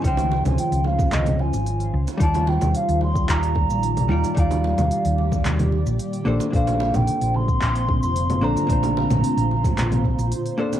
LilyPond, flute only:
\new Staff \with { instrumentName = "Flute" } { \time 4/4 \key bes \major \tempo 4 = 111 g''8. aes''16 g''8 f''8 ees''8 aes''4 r8 | a''8 g''8 f''8 c'''8 bes''2 | f''2 r2 | f''8. g''8. c'''4~ c'''16 c'''8. bes''8~ |
bes''2. r4 | }